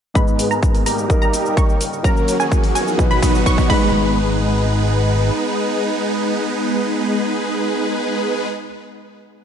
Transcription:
0.14 1.05 G#2 medium
0.14 1.05 G#3 medium
0.14 0.48 G#3 medium
0.14 1.09 B3 medium
0.14 1.05 B3 medium
0.14 0.48 B3 medium
0.14 0.48 D#4 medium
0.14 1.05 D#4 medium
0.14 0.48 G#4 medium
0.14 0.48 B4 loud
0.14 1.09 G#5 medium
0.14 0.48 B5 loud
0.14 2.02 D#6 medium
0.14 kick loud
0.14 riser medium
0.14 shaker soft
0.28 shaker soft
0.39 0.59 G#1 loud
0.39 open hi-hat loud
0.39 shaker medium
0.51 0.83 G#3 medium
0.51 0.83 B3 medium
0.51 0.83 D#4 medium
0.51 0.83 G#4 medium
0.51 0.83 A#4 medium
0.51 0.83 A#5 medium
0.51 shaker soft
0.63 kick loud
0.63 shaker soft
0.75 open hi-hat medium
0.75 shaker soft
0.86 1.06 G#1 loud
0.86 1.15 G3 medium
0.86 1.15 A#3 medium
0.86 1.15 D#4 medium
0.86 1.15 G4 medium
0.86 1.15 A#4 medium
0.86 1.15 A#5 medium
0.86 open hi-hat loud
0.86 shaker medium
0.98 shaker soft
1.09 1.99 G3 medium
1.09 1.99 A#3 medium
1.09 2.00 D#4 medium
1.09 2.97 A#4 medium
1.09 2.00 A#4 medium
1.09 2.03 G5 medium
1.09 kick loud
1.09 shaker soft
1.22 1.54 G3 loud
1.22 1.54 A#3 medium
1.22 1.54 D#4 medium
1.22 1.54 G4 medium
1.22 1.54 A#4 loud
1.22 1.54 A#5 loud
1.22 shaker soft
1.33 1.53 D#1 loud
1.33 open hi-hat loud
1.33 shaker medium
1.46 shaker soft
1.57 1.75 G3 medium
1.57 1.75 A#3 medium
1.57 1.75 C#6 loud
1.57 kick loud
1.57 shaker soft
1.69 shaker soft
1.81 2.01 D#1 loud
1.81 open hi-hat loud
1.81 shaker medium
1.93 shaker soft
2.03 2.94 F#3 medium
2.03 2.37 F#3 loud
2.03 2.94 A#3 medium
2.03 2.37 A#3 medium
2.03 2.37 C#4 medium
2.03 2.94 C#4 medium
2.03 2.37 F#4 medium
2.03 2.37 A#4 loud
2.03 2.95 A#4 medium
2.03 2.98 F#5 medium
2.03 2.37 A#5 loud
2.03 2.98 C#6 medium
2.03 kick loud
2.03 shaker soft
2.17 shaker soft
2.28 2.48 F#1 loud
2.28 open hi-hat loud
2.28 shaker medium
2.40 2.72 F#3 medium
2.40 2.72 A#3 medium
2.40 2.72 C#4 medium
2.40 2.72 F#4 medium
2.40 2.72 G#4 medium
2.40 2.72 G#5 medium
2.40 shaker soft
2.52 kick loud
2.52 shaker soft
2.64 open hi-hat medium
2.64 shaker soft
2.75 2.95 F#1 loud
2.75 3.04 F#3 medium
2.75 3.04 B3 medium
2.75 3.04 D#4 medium
2.75 3.04 F#4 medium
2.75 3.04 G#4 medium
2.75 3.04 G#5 medium
2.75 open hi-hat loud
2.75 shaker medium
2.87 shaker soft
2.98 3.69 B2 medium
2.98 3.69 F#3 medium
2.98 3.68 B3 medium
2.98 3.69 D#4 medium
2.98 3.69 B4 medium
2.98 3.70 B4 medium
2.98 3.69 F#5 medium
2.98 3.69 D#6 medium
2.98 kick loud
2.98 shaker soft
3.11 3.43 F#3 loud
3.11 3.43 B3 medium
3.11 3.43 D#4 medium
3.11 3.43 F#4 medium
3.11 3.43 B4 loud
3.11 3.43 B5 loud
3.11 shaker soft
3.22 3.42 B1 loud
3.22 kick loud
3.22 open hi-hat loud
3.22 shaker medium
3.35 shaker soft
3.46 3.64 F#3 medium
3.46 3.64 B3 medium
3.46 3.64 D#4 medium
3.46 3.64 F#4 medium
3.46 3.64 C#5 loud
3.46 3.64 C#6 loud
3.46 kick loud
3.46 shaker soft
3.58 kick medium
3.58 shaker soft
3.68 5.31 G#1 loud
3.68 8.61 G#3 medium
3.68 8.47 G#3 medium
3.68 8.62 B3 medium
3.68 8.47 B3 medium
3.68 8.47 D#4 medium
3.68 8.63 D#4 medium
3.68 8.47 G#4 medium
3.68 8.47 B4 loud
3.68 8.47 B4 medium
3.68 8.64 B4 loud
3.68 8.63 B5 loud
3.68 kick loud
3.68 crash medium

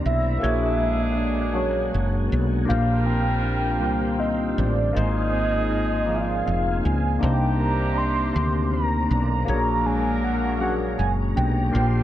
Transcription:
0.00 0.41 C3 medium
0.00 0.49 D#3 medium
0.00 0.39 A#3 medium
0.00 0.79 A#3 medium
0.00 0.43 C4 medium
0.00 0.43 D4 medium
0.00 0.82 D4 medium
0.00 0.43 D#4 medium
0.00 0.43 G4 medium
0.00 0.38 C5 medium
0.00 0.43 C5 medium
0.00 0.43 D5 medium
0.00 0.38 A#5 medium
0.06 0.39 B1 medium
0.06 1.20 E5 loud
0.39 2.66 A#2 medium
0.39 2.26 D3 medium
0.39 2.26 G#3 medium
0.39 1.15 A#3 medium
0.39 0.47 C#4 medium
0.39 2.26 D4 medium
0.39 1.16 F#4 medium
0.39 2.26 G#4 medium
0.39 1.17 G#4 medium
0.39 2.66 A#4 medium
0.39 2.65 F#5 medium
0.39 2.65 G#5 medium
0.43 1.89 A#1 loud
0.43 1.19 D4 medium
0.43 1.18 C#5 medium
0.79 1.91 G#3 medium
1.15 2.29 D4 medium
1.15 1.57 D5 medium
1.53 2.75 F#3 medium
1.53 2.29 A#3 medium
1.53 2.29 D4 medium
1.53 2.30 F#4 medium
1.53 2.31 G#4 medium
1.53 2.40 C#5 medium
1.57 2.31 C#5 medium
1.92 2.27 F#1 medium
1.92 2.75 G#3 medium
2.29 2.65 B1 medium
2.29 3.08 D4 medium
2.65 4.94 A#2 medium
2.65 4.52 G3 medium
2.65 3.42 A#3 medium
2.65 4.52 A#3 medium
2.65 3.42 D4 medium
2.65 4.52 F4 medium
2.65 3.43 F4 medium
2.65 3.44 G4 medium
2.65 4.52 A#4 medium
2.65 9.43 C5 medium
2.65 7.17 F5 medium
2.65 3.03 F5 loud
2.65 4.92 G5 medium
2.70 3.83 A#1 loud
2.70 3.44 C5 medium
3.05 4.18 C4 medium
3.05 3.41 G5 loud
3.43 4.55 D4 medium
3.43 4.21 G5 loud
3.79 4.53 C2 loud
3.79 4.56 D3 medium
3.79 5.01 G3 medium
3.79 4.55 A#3 medium
3.79 4.57 F4 medium
3.79 4.57 G4 medium
3.84 4.58 C5 medium
4.18 5.31 C4 medium
4.18 4.60 D#5 medium
4.56 4.91 A1 medium
4.56 5.01 D4 medium
4.56 4.97 D5 medium
4.93 6.42 G#1 loud
4.93 7.20 G#2 medium
4.93 6.79 F3 medium
4.93 6.79 G#3 medium
4.93 5.69 A#3 medium
4.93 5.69 D#4 medium
4.93 6.79 D#4 medium
4.93 5.70 F4 medium
4.93 6.79 G#4 medium
4.93 5.71 G#4 medium
4.93 6.11 D#5 loud
4.93 7.18 G#5 medium
4.97 5.71 C5 medium
5.31 6.45 C4 medium
5.69 6.82 D#4 medium
6.06 7.28 F3 medium
6.06 6.82 A#3 medium
6.06 6.82 D#4 medium
6.06 6.83 F4 medium
6.06 6.84 G#4 medium
6.06 6.46 F5 loud
6.10 6.84 D5 medium
6.45 6.80 F1 medium
6.45 7.57 C4 medium
6.45 6.86 F5 loud
6.82 7.18 C#2 medium
6.82 7.95 D#4 medium
6.82 7.21 G#5 loud
7.19 8.31 C2 loud
7.19 9.05 C3 medium
7.19 9.46 C3 medium
7.19 9.05 G3 medium
7.19 7.95 A#3 medium
7.19 7.96 D4 medium
7.19 9.05 D4 medium
7.19 7.96 D#4 medium
7.19 9.05 G4 medium
7.19 7.97 G4 medium
7.19 9.45 D5 medium
7.19 7.62 G5 loud
7.19 9.45 A#5 medium
7.24 7.98 C5 medium
7.57 8.71 A#3 medium
7.57 7.99 A#5 loud
7.95 9.08 D4 medium
7.95 8.72 C6 loud
8.33 9.06 D2 medium
8.33 9.54 D#3 medium
8.33 9.09 A#3 medium
8.33 9.10 C4 medium
8.33 9.09 D4 medium
8.33 9.10 G4 medium
8.37 9.11 C5 medium
8.71 9.85 A#3 medium
8.71 9.07 A#5 loud
9.09 9.44 B1 medium
9.09 9.88 D4 medium
9.09 9.88 A#5 loud
9.45 10.94 A#1 loud
9.45 11.72 A#2 medium
9.45 11.32 F#3 medium
9.45 10.21 A#3 medium
9.45 11.32 A#3 medium
9.45 9.53 C#4 medium
9.45 11.32 D4 medium
9.45 10.22 F#4 medium
9.45 11.70 G#4 medium
9.45 10.23 G#4 medium
9.45 11.32 A#4 medium
9.45 11.71 C#5 medium
9.45 11.71 A#5 medium
9.49 10.25 D4 medium
9.49 10.24 C#5 medium
9.85 10.96 G#3 medium
9.85 10.23 G#5 loud
10.23 11.36 D4 medium
10.23 10.58 F#5 loud
10.58 11.80 F#3 medium
10.58 11.35 A#3 medium
10.58 10.66 C#4 medium
10.58 11.36 F#4 medium
10.58 11.36 G#4 medium
10.58 10.75 F#5 loud
10.63 11.39 D4 medium
10.63 11.37 C#5 medium
10.97 11.32 F#1 medium
10.97 11.80 G#3 medium
10.97 11.12 G#5 loud
11.36 11.70 B1 loud
11.36 12.03 D4 medium
11.36 12.03 G5 loud
11.71 12.03 A#1 loud
11.71 12.03 A#2 medium
11.71 12.03 D3 medium
11.71 12.03 F3 medium
11.71 12.03 A#3 medium
11.71 12.03 C4 medium
11.71 12.03 D4 medium
11.71 12.03 F4 medium
11.71 12.03 G4 medium
11.71 12.03 F5 medium
11.71 12.03 C6 medium
11.76 12.03 C5 medium

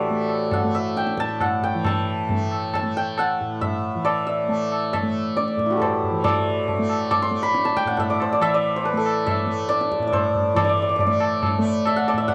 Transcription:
0.00 1.18 A2 medium
0.00 1.74 E3 medium
0.00 0.10 A3 medium
0.00 3.32 D4 soft
0.00 3.12 E4 soft
0.00 1.03 F#4 soft
0.00 0.59 G4 soft
0.00 2.67 A4 medium
0.00 2.50 B4 soft
0.00 2.43 C5 medium
0.00 2.30 D5 medium
0.00 0.74 E5 medium
0.00 0.23 A5 medium
0.06 0.64 A3 medium
0.06 tabla tin medium
0.29 tabla na medium
0.51 1.03 F#5 medium
0.51 tabla na medium
0.51 tabla ge medium
0.64 2.31 A3 medium
0.75 3.04 E5 medium
0.97 1.47 G5 medium
0.97 tabla te medium
1.07 tabla te medium
1.18 3.40 A2 medium
1.18 1.86 A5 loud
1.18 tabla ke medium
1.29 tabla te medium
1.40 1.69 F#5 medium
1.40 tabla na medium
1.40 tabla ge medium
1.62 2.96 G5 medium
1.62 tabla ge soft
1.74 3.95 E3 medium
1.85 2.75 A5 medium
1.85 tabla na medium
1.85 tabla ge medium
2.29 2.83 A3 medium
2.29 tabla tin medium
2.29 tabla ge medium
2.52 tabla na medium
2.74 4.68 A5 medium
2.74 tabla na medium
2.74 tabla ge medium
2.83 4.49 A3 medium
2.97 3.25 G5 medium
3.18 5.34 F#5 medium
3.18 tabla na medium
3.41 5.56 A2 medium
3.61 4.26 E5 medium
3.61 tabla tin medium
3.61 tabla ge medium
3.95 6.11 E3 medium
4.05 5.36 D5 medium
4.05 tabla na medium
4.27 4.93 E5 medium
4.49 5.03 A3 medium
4.49 tabla tin medium
4.72 tabla na medium
4.93 7.23 E5 medium
4.93 tabla na medium
4.93 tabla ge medium
5.03 6.79 A3 medium
5.37 6.24 D5 medium
5.37 tabla te medium
5.48 tabla te medium
5.57 7.85 A2 medium
5.57 tabla ke medium
5.66 9.14 E4 soft
5.70 7.83 F#4 soft
5.70 7.93 G4 soft
5.70 tabla te medium
5.77 8.70 A4 soft
5.77 7.28 B4 soft
5.82 7.49 C5 medium
5.82 tabla na medium
5.82 tabla ge medium
6.03 tabla ge soft
6.11 6.24 E3 medium
6.24 8.40 E3 medium
6.24 8.09 D5 medium
6.24 tabla na loud
6.24 tabla ge medium
6.68 tabla tin medium
6.68 tabla ge medium
6.79 7.31 A3 medium
6.90 tabla na medium
7.11 8.74 D6 medium
7.11 tabla na medium
7.11 tabla ge medium
7.22 7.49 C6 medium
7.31 8.93 A3 medium
7.43 8.28 B5 loud
7.54 tabla te medium
7.65 9.58 A5 medium
7.65 tabla te medium
7.77 7.93 G5 loud
7.77 tabla ke medium
7.85 9.99 A2 medium
7.85 7.96 F#5 medium
7.85 tabla te medium
7.97 8.42 E5 medium
7.97 10.12 F#5 medium
7.97 tabla tin medium
7.97 tabla ge medium
8.10 8.32 D5 medium
8.20 8.76 C5 medium
8.20 tabla na medium
8.33 8.54 D5 medium
8.40 10.54 E3 medium
8.40 9.26 E5 loud
8.40 tabla na medium
8.54 9.68 D5 medium
8.76 8.91 C5 medium
8.84 10.19 B4 medium
8.84 tabla tin medium
8.93 9.47 A3 medium
8.97 11.90 A4 medium
9.06 tabla na medium
9.26 11.56 E5 medium
9.26 tabla na medium
9.26 tabla ge medium
9.47 11.06 A3 medium
9.69 10.07 D5 loud
9.69 tabla te medium
9.81 tabla te medium
9.92 tabla ke medium
9.99 12.13 A2 medium
9.99 tabla te medium
10.07 10.56 D5 medium
10.13 12.35 C5 medium
10.13 tabla na medium
10.13 tabla ge medium
10.35 tabla ge medium
10.54 12.35 E3 medium
10.54 10.64 D5 medium
10.54 tabla na loud
10.54 tabla ge loud
10.64 10.69 D5 medium
10.69 10.77 D5 medium
10.77 10.82 D5 soft
10.82 10.89 D5 medium
10.89 10.96 D5 medium
10.96 11.00 D5 medium
10.96 tabla tin medium
10.96 tabla ge medium
11.00 11.06 D5 medium
11.06 11.59 A3 medium
11.06 12.08 D5 medium
11.20 tabla na medium
11.43 tabla na medium
11.43 tabla ge medium
11.59 12.35 A3 medium
11.65 tabla te medium
11.86 12.17 E5 medium
11.86 tabla na medium
11.96 12.28 F#5 medium
12.08 12.35 D5 medium
12.08 tabla na medium
12.13 12.35 A2 medium
12.18 12.35 E5 medium
12.28 12.35 F#5 medium
12.28 tabla tin medium
12.28 tabla ge medium

